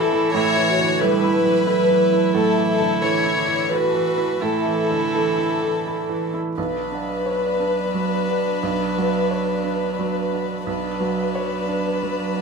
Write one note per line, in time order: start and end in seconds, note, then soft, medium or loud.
0.00 0.30 A2 medium
0.00 0.37 D3 medium
0.00 0.37 E3 medium
0.00 1.04 E3 medium
0.00 0.12 E4 medium
0.00 0.34 E4 medium
0.00 0.35 A4 medium
0.12 0.48 E4 medium
0.17 0.27 A5 medium
0.34 2.31 A2 medium
0.34 0.70 E4 medium
0.34 0.44 A4 medium
0.34 1.00 C#5 medium
0.51 0.61 E5 medium
0.57 0.92 E3 medium
0.67 1.03 F#4 medium
0.67 0.77 E5 medium
0.79 1.01 D3 soft
0.84 0.94 B5 medium
1.00 1.37 E3 medium
1.00 1.36 G3 medium
1.00 1.67 E4 medium
1.00 1.10 A4 medium
1.00 2.35 B4 medium
1.17 1.27 A5 medium
1.24 1.59 E4 medium
1.33 3.03 F#3 medium
1.33 1.43 A5 medium
1.45 1.81 E3 medium
1.50 1.60 B5 medium
1.66 2.03 E4 medium
1.66 3.67 E4 medium
1.66 1.77 A4 medium
1.83 1.93 A5 medium
1.90 2.26 E3 medium
2.12 2.48 E4 medium
2.17 2.27 A5 medium
2.33 4.38 A2 medium
2.33 2.44 A4 medium
2.33 2.67 A4 medium
2.50 2.61 E5 medium
2.58 2.94 E3 medium
2.68 3.02 A4 medium
2.68 2.78 E5 medium
2.81 3.03 D3 soft
2.85 2.96 B5 medium
3.02 3.38 E3 medium
3.02 3.39 E3 medium
3.02 3.13 A4 medium
3.02 3.71 C#5 medium
3.18 3.29 A5 medium
3.26 3.62 E4 medium
3.36 3.72 D3 medium
3.36 3.46 A5 medium
3.47 3.85 E3 soft
3.53 3.64 B5 medium
3.71 4.41 E3 medium
3.71 4.09 E4 medium
3.71 4.43 F#4 medium
3.71 3.82 A4 medium
3.71 4.43 B4 medium
3.89 4.00 A5 medium
3.95 4.33 E3 medium
4.18 4.56 E4 soft
4.24 4.35 A5 soft
4.41 6.53 A2 medium
4.41 6.33 E3 medium
4.41 6.36 E4 medium
4.41 6.36 A4 medium
4.41 4.53 A4 medium
4.60 4.71 E5 medium
4.66 5.04 E3 medium
4.78 4.89 E5 medium
4.90 5.14 D3 soft
4.96 5.07 B5 medium
5.15 5.53 E3 soft
5.15 5.25 A4 medium
5.32 5.43 A5 medium
5.38 5.76 E4 medium
5.50 5.61 A5 medium
5.63 6.01 E3 soft
5.68 5.79 B5 medium
5.86 6.25 E4 soft
5.86 5.97 A4 medium
6.04 6.15 A5 medium
6.09 6.48 E3 soft
6.34 6.57 E4 soft
6.41 6.51 A5 medium
6.56 8.59 B1 medium
6.56 10.64 F#3 medium
6.56 10.63 D4 medium
6.56 10.63 B4 medium
6.56 6.68 B4 medium
6.92 7.46 D4 soft
6.92 7.03 F#5 soft
7.09 7.19 B4 medium
7.26 7.81 C#5 soft
7.44 7.54 D5 medium
7.60 8.15 D4 soft
7.60 7.71 B4 medium
7.78 7.88 D5 soft
7.94 8.49 F#3 soft
7.94 8.05 B5 soft
8.12 8.22 B4 medium
8.29 8.83 D4 soft
8.29 8.39 F#5 soft
8.47 8.57 B5 soft
8.63 10.64 B1 medium
8.63 8.73 B4 medium
8.97 9.51 F#3 soft
8.97 9.07 F#5 medium
9.13 9.23 B4 medium
9.31 9.85 C#5 soft
9.48 9.58 D5 soft
9.64 10.19 D4 soft
9.64 9.74 B4 medium
9.81 9.91 D5 soft
9.99 10.54 F#3 soft
9.99 10.09 B5 soft
10.16 10.26 B4 medium
10.32 10.87 D4 soft
10.32 10.44 F#5 soft
10.50 10.60 B5 soft
10.67 12.41 B1 medium
10.67 12.41 F#3 medium
10.67 12.41 D4 medium
10.67 12.41 B4 medium
10.67 10.77 B4 medium
11.00 11.55 F#3 soft
11.00 11.12 F#5 medium
11.18 11.28 B4 medium
11.35 11.89 C#5 soft
11.51 11.62 D5 soft
11.68 12.23 D4 soft
11.68 11.78 B4 medium
11.85 11.96 D5 soft
12.01 12.41 F#3 soft
12.01 12.12 B5 soft
12.19 12.30 B4 medium
12.37 12.41 D4 soft
12.37 12.41 F#5 soft